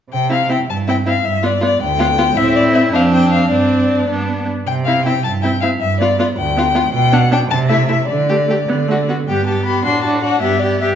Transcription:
0.11 0.59 C3 soft
0.11 0.30 G5 medium
0.30 0.37 C4 soft
0.30 0.36 E4 soft
0.30 0.50 F5 soft
0.49 0.56 C4 soft
0.49 0.55 E4 soft
0.49 0.58 G5 soft
0.69 1.16 G2 soft
0.69 0.77 A5 medium
0.88 0.94 C4 soft
0.88 0.94 E4 soft
0.88 0.96 G5 soft
1.06 1.13 C4 soft
1.06 1.12 E4 soft
1.06 1.27 F5 soft
1.25 1.72 G2 soft
1.25 1.47 E5 medium
1.43 1.49 B3 soft
1.43 1.49 F4 soft
1.43 1.64 D5 medium
1.60 1.68 B3 soft
1.60 1.67 F4 soft
1.60 1.81 D5 medium
1.81 2.27 D2 medium
1.81 2.39 G5 medium
1.99 2.06 B3 soft
1.99 2.05 F4 soft
2.18 2.25 B3 soft
2.18 2.24 F4 soft
2.36 2.89 A2 medium
2.36 2.89 C4 soft
2.36 2.94 E4 soft
2.36 2.55 E5 medium
2.56 2.63 D5 medium
2.75 2.82 E5 medium
2.93 3.49 F2 soft
2.93 3.49 C4 soft
2.93 3.50 D4 soft
2.93 3.02 F5 medium
3.13 3.31 G5 medium
3.32 3.51 F5 soft
3.50 4.08 G2 soft
3.50 4.08 C4 soft
3.50 4.08 D4 soft
3.50 4.08 D5 soft
4.08 4.47 G2 soft
4.08 4.47 B3 soft
4.08 4.48 D4 soft
4.67 5.15 C3 soft
4.67 4.75 G5 medium
4.85 4.93 C4 soft
4.85 4.93 E4 soft
4.85 5.05 F5 soft
5.05 5.12 C4 soft
5.05 5.12 E4 soft
5.05 5.23 G5 medium
5.24 5.71 G2 soft
5.24 5.32 A5 medium
5.42 5.50 C4 soft
5.42 5.49 E4 soft
5.42 5.61 G5 medium
5.61 5.69 C4 soft
5.61 5.68 E4 soft
5.61 5.69 F5 medium
5.81 6.28 G2 soft
5.81 5.99 E5 medium
6.00 6.06 B3 soft
6.00 6.07 F4 soft
6.00 6.18 D5 medium
6.19 6.25 B3 soft
6.19 6.26 F4 soft
6.19 6.27 D5 soft
6.37 6.84 D2 medium
6.37 6.92 G5 medium
6.57 6.63 B3 soft
6.57 6.64 F4 soft
6.74 6.80 B3 soft
6.74 6.81 F4 soft
6.93 7.40 B2 medium
6.93 7.15 G5 medium
7.12 7.18 B3 soft
7.12 7.19 D4 soft
7.12 7.32 F#5 medium
7.31 7.37 B3 soft
7.31 7.38 D4 soft
7.31 7.40 G5 medium
7.50 7.98 C3 medium
7.50 7.58 A5 medium
7.69 7.75 A3 soft
7.69 7.76 E4 soft
7.69 7.88 E5 medium
7.88 7.95 A3 soft
7.88 7.95 E4 soft
7.88 8.08 E5 medium
8.08 8.59 D3 medium
8.08 9.07 D5 soft
8.29 8.36 A3 soft
8.29 8.36 G4 soft
8.48 8.55 A3 soft
8.48 8.56 G4 soft
8.69 9.19 D3 soft
8.69 8.77 B3 soft
8.88 8.96 A3 soft
8.88 8.97 F#4 soft
9.09 9.17 B3 soft
9.09 9.16 F#4 soft
9.28 9.79 G2 soft
9.28 9.47 B3 soft
9.28 9.47 G4 soft
9.28 9.45 G5 soft
9.46 9.66 B3 soft
9.46 9.66 G4 soft
9.46 9.65 A5 soft
9.65 9.85 B3 soft
9.65 9.84 G4 soft
9.65 9.84 B5 soft
9.84 10.36 A2 soft
9.84 10.04 D4 soft
9.84 10.04 F#4 soft
9.84 10.02 C6 medium
10.02 10.24 D4 soft
10.02 10.23 F#4 soft
10.02 10.10 A5 soft
10.22 10.43 D4 soft
10.22 10.41 F#4 soft
10.22 10.41 F#5 soft
10.41 10.92 G2 soft
10.41 10.62 B3 soft
10.41 10.61 G4 soft
10.41 10.61 E5 soft
10.60 10.81 B3 soft
10.60 10.80 G4 soft
10.60 10.80 D5 soft
10.81 10.95 B3 soft
10.81 10.95 G4 soft
10.81 10.88 E5 soft

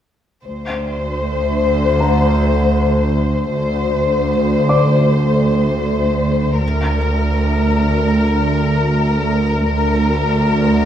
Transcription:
0.46 3.50 D2 medium
0.46 3.50 D2 soft
0.46 3.51 D2 soft
0.46 3.50 C5 soft
2.00 4.27 A#5 soft
3.53 6.58 D2 soft
3.53 6.57 C5 soft
4.69 6.96 D5 soft
4.69 6.96 D6 soft
6.62 9.66 D2 soft
6.62 9.66 D2 medium
6.62 9.66 A#4 soft
9.70 10.85 D2 soft
9.70 10.85 D2 medium
9.70 10.85 D2 soft
9.70 10.85 A#4 soft

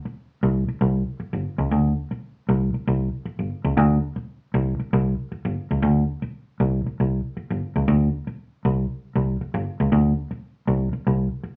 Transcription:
0.05 muted fingered electric bass stroke soft
0.43 0.64 C2 medium
0.68 muted fingered electric bass stroke soft
0.81 1.02 C2 medium
1.20 muted fingered electric bass stroke soft
1.33 1.43 G1 medium
1.58 1.68 C#2 medium
1.71 1.92 D2 loud
2.11 muted fingered electric bass stroke soft
2.49 2.69 C2 medium
2.74 muted fingered electric bass stroke soft
2.87 3.08 C2 medium
3.25 muted fingered electric bass stroke soft
3.39 3.49 G1 medium
3.64 3.74 C#2 medium
3.77 3.98 D2 loud
4.16 muted fingered electric bass stroke medium
4.54 4.74 C2 loud
4.80 muted fingered electric bass stroke soft
4.93 5.13 C2 loud
5.32 muted fingered electric bass stroke medium
5.45 5.54 G1 medium
5.71 5.80 C#2 medium
5.82 6.03 D2 loud
6.22 muted fingered electric bass stroke medium
6.60 6.80 C2 loud
6.86 muted fingered electric bass stroke soft
7.00 7.20 C2 medium
7.37 muted fingered electric bass stroke soft
7.50 7.60 G1 medium
7.76 7.85 C#2 medium
7.88 8.08 D2 loud
8.27 muted fingered electric bass stroke soft
8.65 8.85 C2 medium
9.15 9.36 C2 medium
9.41 muted fingered electric bass stroke soft
9.54 9.64 G1 medium
9.80 9.89 C#2 medium
9.92 10.12 D2 loud
10.31 muted fingered electric bass stroke soft
10.67 10.88 C2 medium
10.93 muted fingered electric bass stroke soft
11.07 11.27 C2 medium
11.43 muted fingered electric bass stroke soft

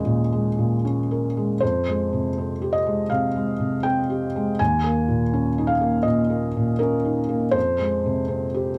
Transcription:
0.00 1.63 D#2 soft
0.00 0.05 A#2 soft
0.00 0.32 G#3 soft
0.00 0.85 C#4 soft
0.00 1.11 A#4 soft
0.00 0.83 D#5 medium
0.05 0.47 A#2 soft
0.32 0.74 G#3 soft
0.58 1.00 A#2 soft
0.85 1.26 C#4 soft
1.11 1.52 A#4 soft
1.37 1.62 G#3 soft
1.60 3.08 F2 soft
1.60 2.74 C5 medium
1.88 2.28 G#3 soft
2.13 2.52 C3 soft
2.38 2.77 C4 soft
2.62 3.01 G4 soft
2.73 3.10 D#5 medium
2.86 3.26 G#3 soft
3.10 3.51 C3 soft
3.10 3.84 F5 medium
3.36 3.75 G#3 soft
3.60 4.00 C3 soft
3.83 4.24 C4 soft
3.83 4.58 G5 medium
4.10 4.49 G4 soft
4.36 4.60 G#3 soft
4.59 6.04 D#2 soft
4.59 5.70 G#5 medium
4.84 5.23 A#3 soft
5.08 5.48 A#2 soft
5.33 5.73 C#4 soft
5.58 5.97 D#4 soft
5.67 6.05 F5 medium
5.81 6.21 A#3 soft
6.03 6.45 A#2 soft
6.03 6.79 D#5 medium
6.30 6.70 A#3 soft
6.57 6.96 A#2 soft
6.79 7.20 C#4 soft
6.79 7.54 A#4 medium
7.05 7.45 D#4 soft
7.29 7.54 A#3 soft
7.51 8.78 F2 soft
7.51 8.78 C5 medium
7.79 8.19 G#3 soft
8.06 8.46 C3 soft
8.28 8.70 C4 soft
8.54 8.78 G4 soft

